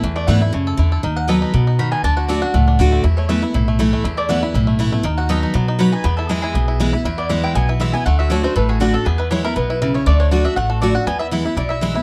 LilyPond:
<<
  \new Staff \with { instrumentName = "Mandolin" } { \time 4/4 \key e \mixolydian \tempo 4 = 239 r8 d''8 fis''8 r2 r8 | r8 fis''8 dis''8 r4. b''8 gis''8 | a''8 fis''8 d''8 fis''2~ fis''8 | r8 cis''8 e''8 r2 r8 |
r8 d''8 fis''8 r2 r8 | r8 fis''8 dis''8 r4. b''8 gis''8 | b'8 a'8 gis'8 gis'2~ gis'16 r16 | r8 d''8 e''8 g''8 gis''8 b'8 e''8 gis''8 |
fis''8 e''8 cis''8 c''8 b'8 gis'8 fis'8 a'8 | gis'8 b'8 cis''8 ais'8 b'4. cis''8 | d''8 cis''8 d''8 e''8 fis''8 a'8 d''8 fis''8 | gis''8 e''8 r4 d''8 e''4. | }
  \new Staff \with { instrumentName = "Five-string banjo" } { \time 4/4 \key e \mixolydian <e e' a'>8 a8 e'8 e'8 a8 a'8 e'8 a'8 | dis'4 a'8 dis'8 b8 dis'8 fis'8 b8 | d'8 fis'8 a'8 d'8 a8 d'8 fis'8 a8 | e'8 a8 e8 e'8 e'8 a8 e'8 a8 |
e'8 a8 e8 e'8 e'8 a8 e'8 a8 | dis'8 fis'8 a'8 dis'8 b8 dis'8 fis'8 b8 | b8 e'8 e'8 e'8 b8 e'8 e'8 e'8 | e'8 b8 e'8 e'8 b8 e'8 e'8 b8 |
a8 fis'8 a'8 a8 a'8 fis'8 d'8 a'8 | b8 e'8 e'8 e'8 b8 e'8 e'8 e'8 | a8 d'8 fis'8 d'8 a8 fis'8 a'8 fis'8 | b8 e'8 e'8 e'8 e'8 e'8 e'8 e'8 | }
  \new Staff \with { instrumentName = "Steel-string acoustic guitar" } { \time 4/4 \key e \mixolydian << { r4 <e a b e'>8 <b e'>8 r2 | r4 <fis b dis' b'>4 r2 | r4 <d a d' fis'>8 <d' fis'>8 r4 <d a d' fis'>4 | r4 <e a b e'>8 <b e'>8 r4 <e a b e'>4 |
r4 <e a b e'>8 <b e'>8 r4 <e a b e'>8 <b e'>8 | r4 <fis b dis' b'>4 r4 <fis b dis' b'>8 <dis' b'>8 | r4 <e gis b e'>4 r4 <e gis b e'>8 <b e'>8 | r4 <e gis b e'>4 r4 <e gis b e'>8 <b e'>8 |
r4 <d a d' fis'>8 <d' fis'>8 r4 <d a d' fis'>8 <d' fis'>8 | r4 <e gis b e'>8 <b e'>8 r2 | r4 <d a d' fis'>8 <d' fis'>8 r4 <d a d' fis'>8 <d' fis'>8 | r4 <e gis b e'>8 <b e'>8 r4 <e gis b e'>8 <b e'>8 | } \\ { e,2 cis4 d4 | dis2 b,4 dis4 | d2 a,2 | e,2 a,2 |
e,2 a,2 | dis2 fis2 | e,2 b,2 | e,2 b,2 |
d2 a,2 | e,2 b,4 cis4 | d2 a,2 | e,2 b,2 | } >> }
  \new Staff \with { instrumentName = "Upright bass" } { \clef bass \time 4/4 \key e \mixolydian e,4 gis,4 fis,4 e,4 | dis,2 b,2 | d,2 cis,4 d,4 | e,2 b,,2 |
e,2 b,,2 | dis,2 b,2 | e,2 b,,2 | e,2 b,,2 |
d,2 a,,2 | e,2 b,,2 | d,2 a,,2 | e,2 b,,2 | }
>>